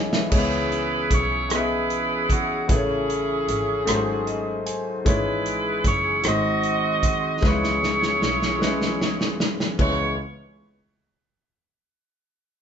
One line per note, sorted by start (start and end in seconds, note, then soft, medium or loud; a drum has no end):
0.00 0.28 B1 medium
0.00 0.29 E3 medium
0.00 0.29 B3 medium
0.00 0.29 C#4 medium
0.00 0.30 G#4 medium
0.00 0.32 C#5 soft
0.00 0.12 D#5 soft
0.00 0.33 F#5 medium
0.00 0.11 G#5 medium
0.12 0.50 B4 soft
0.12 0.49 E5 medium
0.12 snare medium
0.30 1.07 C#2 medium
0.30 1.46 C#3 soft
0.30 3.83 E3 medium
0.30 1.36 B3 medium
0.30 2.66 B3 medium
0.30 3.84 C#4 medium
0.30 0.38 D#4 medium
0.30 1.47 E4 medium
0.30 1.37 G#4 medium
0.30 2.66 G#4 medium
0.30 1.37 C#5 medium
0.30 kick loud
0.30 crash medium
0.34 1.39 E4 medium
0.34 1.47 G#4 medium
0.34 1.09 B4 medium
0.72 closed hi-hat soft
1.11 2.65 B1 medium
1.11 1.51 C#5 medium
1.11 kick medium
1.11 closed hi-hat medium
1.49 2.55 B3 medium
1.49 2.55 E4 medium
1.49 2.66 E4 medium
1.49 2.56 G#4 medium
1.49 2.66 G#4 medium
1.49 1.57 D#5 medium
1.49 cross-stick medium
1.49 closed hi-hat medium
1.53 2.27 B4 medium
1.58 2.59 E5 medium
1.90 closed hi-hat soft
2.30 2.70 F#4 medium
2.30 kick medium
2.30 closed hi-hat medium
2.68 3.44 A1 medium
2.68 3.83 C#3 medium
2.68 3.73 A3 medium
2.68 4.64 C#4 medium
2.68 3.74 E4 medium
2.68 4.63 E4 medium
2.68 3.74 G#4 medium
2.68 6.21 G#4 medium
2.68 4.63 G#4 medium
2.68 2.76 B4 medium
2.68 kick loud
2.68 closed hi-hat medium
2.77 3.78 C#5 medium
3.10 closed hi-hat soft
3.48 3.84 G#1 medium
3.48 closed hi-hat medium
3.85 4.62 G#1 medium
3.85 5.01 G#2 medium
3.85 5.05 F#3 medium
3.85 4.91 A3 medium
3.85 4.92 F#4 medium
3.85 4.93 G#4 medium
3.85 3.94 A4 medium
3.85 5.05 C5 medium
3.85 cross-stick medium
3.85 closed hi-hat medium
3.95 4.96 C5 medium
4.27 4.63 D#5 medium
4.27 closed hi-hat soft
4.66 5.03 G#5 medium
4.66 closed hi-hat medium
5.05 5.81 G#1 medium
5.05 6.20 G#2 medium
5.05 6.23 E3 medium
5.05 6.10 G#3 medium
5.05 7.40 G#3 medium
5.05 6.11 C#4 medium
5.05 6.23 C#4 medium
5.05 6.11 E4 medium
5.05 6.21 E4 medium
5.05 6.21 G#4 medium
5.05 5.82 B4 medium
5.05 6.12 C#5 medium
5.05 kick loud
5.05 closed hi-hat medium
5.46 closed hi-hat soft
5.84 6.21 F#1 medium
5.84 6.23 C#5 medium
5.84 kick medium
5.84 closed hi-hat medium
6.24 6.99 G#1 medium
6.24 7.39 G#2 medium
6.24 7.41 D#3 medium
6.24 7.29 G#3 medium
6.24 7.41 C4 medium
6.24 7.29 D#4 medium
6.24 7.42 F#4 medium
6.24 7.30 F#4 medium
6.24 7.40 F#4 medium
6.24 7.39 C5 medium
6.24 7.30 C5 medium
6.24 7.44 D#5 loud
6.24 cross-stick medium
6.24 closed hi-hat medium
6.63 closed hi-hat soft
7.03 kick medium
7.03 closed hi-hat medium
7.41 8.17 C#2 medium
7.41 8.57 C#3 medium
7.41 9.77 E3 medium
7.41 8.47 G#3 medium
7.41 9.77 B3 medium
7.41 8.47 C#4 medium
7.41 9.77 C#4 soft
7.41 7.49 D#4 soft
7.41 9.36 E4 medium
7.41 9.77 G#4 medium
7.41 9.36 G#4 medium
7.41 8.48 B4 medium
7.41 kick loud
7.41 snare soft
7.45 9.37 C#5 medium
7.50 8.51 E4 medium
7.64 snare soft
7.83 snare medium
8.03 snare soft
8.22 9.75 B1 medium
8.22 snare medium
8.42 snare medium
8.59 9.65 G#3 medium
8.59 9.65 C#4 medium
8.59 9.66 E4 medium
8.59 9.66 B4 medium
8.59 snare medium
8.82 snare medium
9.01 snare medium
9.21 snare medium
9.40 snare medium
9.60 snare medium
9.79 10.16 C#2 medium
9.79 10.16 E3 medium
9.79 10.15 G#3 medium
9.79 10.15 B3 soft
9.79 10.15 C#4 medium
9.79 10.16 E4 medium
9.79 10.16 G#4 medium
9.79 10.16 B4 medium
9.79 10.16 C#5 medium
9.79 kick medium
9.79 crash medium